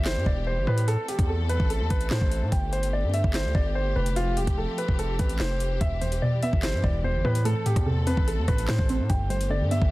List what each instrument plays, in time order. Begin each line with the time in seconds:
Already playing: 808-style bass G1, string section E3 G3 B3 G4
0.05 grand piano C5, snare, clap, closed hi-hat
0.16 808-style bass G2
0.26 808-style bass E1, grand piano D5, kick
0.47 grand piano C5
0.57 808-style bass G1
0.67 808-style bass A2, grand piano B4
0.78 closed hi-hat
0.88 string section E3 A3 C4 A4, grand piano A4, closed hi-hat
1.08 grand piano G4, closed hi-hat
1.19 808-style bass E2, kick, closed hi-hat
1.29 grand piano A4
1.49 grand piano B4, closed hi-hat
1.60 808-style bass A1, kick
1.70 grand piano A4, closed hi-hat
1.80 808-style bass E2
1.90 808-style bass A1, grand piano B4, kick, closed hi-hat
2.01 closed hi-hat
2.10 808-style bass A2, grand piano C5, snare, clap
2.21 808-style bass A1, kick
2.32 closed hi-hat
2.42 808-style bass A2
2.52 808-style bass G1, string section D3 B3 G4, grand piano G5, kick, closed hi-hat
2.73 grand piano C5, closed hi-hat
2.83 closed hi-hat
2.93 grand piano D5
3.03 808-style bass G2
3.14 grand piano E5, closed hi-hat
3.24 808-style bass G1, kick
3.34 grand piano C5, snare, clap, closed hi-hat
3.45 808-style bass D2
3.55 808-style bass G1, grand piano D5, kick
3.75 grand piano C5
3.96 808-style bass F1, grand piano B4
4.06 closed hi-hat
4.16 string section F3 A3 C4, grand piano F4, closed hi-hat
4.37 808-style bass E1, grand piano G4, closed hi-hat
4.47 808-style bass F1, kick, closed hi-hat
4.58 grand piano A4
4.78 grand piano B4, closed hi-hat
4.88 808-style bass F1, kick
4.99 grand piano A4, closed hi-hat
5.19 808-style bass A1, grand piano B4, kick, closed hi-hat
5.29 closed hi-hat
5.39 808-style bass F1, grand piano C5, snare, clap
5.60 closed hi-hat
5.81 808-style bass E1, synth pluck E2, string section E3 G3 B3, grand piano E5, kick, closed hi-hat
6.01 synth pluck E2, grand piano C5, closed hi-hat
6.12 closed hi-hat
6.22 synth pluck B2, grand piano D5
6.43 synth pluck B3, grand piano E5, closed hi-hat
6.53 808-style bass G1, kick
6.63 grand piano C5, snare, clap, closed hi-hat
6.73 808-style bass G2
6.84 808-style bass E1, synth pluck E2, grand piano D5, kick
7.04 synth pluck E2, grand piano C5
7.14 808-style bass G1
7.24 808-style bass A2, synth pluck B3, grand piano B4
7.35 closed hi-hat
7.45 synth pluck A2, string section E3 A3 C4 A4, grand piano A4, closed hi-hat
7.66 synth pluck A2, grand piano G4, closed hi-hat
7.76 808-style bass E2, kick, cross-stick, closed hi-hat
7.86 synth pluck C3, grand piano A4
8.07 synth pluck C4, grand piano B4, closed hi-hat
8.17 808-style bass A1, kick
8.27 grand piano A4, closed hi-hat
8.38 808-style bass E2
8.48 808-style bass A1, synth pluck A2, grand piano B4, kick, cross-stick, closed hi-hat
8.58 closed hi-hat
8.68 808-style bass A2, synth pluck A2, grand piano C5, snare, clap
8.79 808-style bass A1, kick
8.89 synth pluck C4, closed hi-hat
8.99 808-style bass A2
9.10 808-style bass G1, synth pluck G2, string section D3 B3 G4, grand piano G5, kick, closed hi-hat
9.29 synth pluck G2, grand piano C5, closed hi-hat
9.41 closed hi-hat
9.50 synth pluck D3, grand piano D5
9.61 808-style bass G2
9.71 synth pluck B3, grand piano E5, closed hi-hat
9.82 808-style bass G1, kick